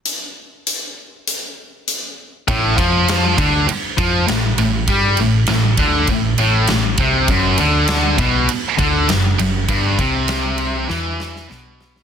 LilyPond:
<<
  \new Staff \with { instrumentName = "Distorted electric guitar" } { \clef bass \time 4/4 \key c \lydian \tempo 4 = 100 r1 | a,8 f4 d8 r8 f8 a,8 a,8 | g8 a,8 a,8 d8 a,8 a,8 a,8 c8 | fis,8 d4 b,8 r8 d8 fis,8 fis,8 |
g,8 c4. e4 b,4 | }
  \new Staff \with { instrumentName = "Distorted electric guitar" } { \clef bass \time 4/4 \key c \lydian r1 | a,8 f4 d8 r8 f8 a,8 a,8 | g8 a,8 a,8 d8 a,8 a,8 a,8 c8 | fis,8 d4 b,8 r8 d8 fis,8 fis,8 |
g,8 c4. e4 b,4 | }
  \new Staff \with { instrumentName = "Picked electric bass" } { \clef bass \time 4/4 \key c \lydian r1 | a,,8 f,4 d,8 r8 f,8 a,,8 a,,8 | g,8 a,,8 a,,8 d,8 a,,8 a,,8 a,,8 c,8 | fis,,8 d,4 b,,8 r8 d,8 fis,,8 fis,,8 |
g,,8 c,4. e,4 b,,4 | }
  \new DrumStaff \with { instrumentName = "Drums" } \drummode { \time 4/4 hh4 hh4 hh4 hh4 | <bd cymr>8 <bd cymr>8 <cymr sn>8 <bd cymr>8 cymr8 <bd cymr>8 <cymr sn>8 cymr8 | <bd cymr>8 cymr8 <cymr sn>8 <bd cymr>8 <bd cymr>8 cymr8 <cymr sn>8 <bd cymr>8 | <bd cymr>8 cymr8 <cymr sn>8 <bd cymr>8 cymr8 <bd cymr>8 <cymr sn>8 cymr8 |
<bd cymr>8 <bd cymr>8 <cymr sn>8 cymr8 sn8 sn16 sn16 sn8 sn16 sn16 | }
>>